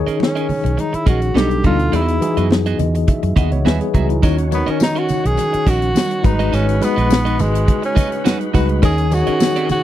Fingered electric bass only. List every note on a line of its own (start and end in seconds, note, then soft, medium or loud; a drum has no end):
0.07 muted fingered electric bass stroke soft
0.49 muted fingered electric bass stroke soft
0.65 0.76 B1 medium
0.94 muted fingered electric bass stroke soft
1.07 1.32 A#1 medium
1.35 1.60 B1 medium
1.65 1.90 D2 medium
1.93 2.18 E2 medium
2.37 2.74 F#2 medium
2.79 3.04 E2 medium
3.23 3.35 F#2 medium
3.37 3.50 D#2 medium
3.52 3.64 C#2 medium
3.66 3.79 D#2 medium
3.95 4.20 C#2 medium
4.23 4.62 D#2 loud
4.68 muted fingered electric bass stroke soft
5.10 muted fingered electric bass stroke soft
5.25 5.37 B1 medium
5.54 muted fingered electric bass stroke soft
5.67 5.92 A#1 medium
6.24 6.50 G#1 medium
6.53 6.78 G#1 loud
6.97 7.41 A#1 medium
7.40 7.65 G#1 loud
8.55 8.80 C#2 medium
8.83 9.22 D#2 loud
9.28 muted fingered electric bass stroke soft
9.70 muted fingered electric bass stroke medium